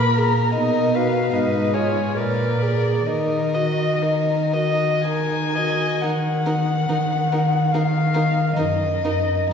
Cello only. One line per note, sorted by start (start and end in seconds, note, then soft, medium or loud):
0.00 0.52 A#2 soft
0.57 1.33 B2 soft
1.35 2.16 G#2 soft
2.18 3.06 A#2 soft
3.09 5.78 D#3 soft
6.03 6.79 D#3 soft
6.89 7.65 D#3 soft
7.75 8.48 D#3 soft
8.58 9.41 F#2 soft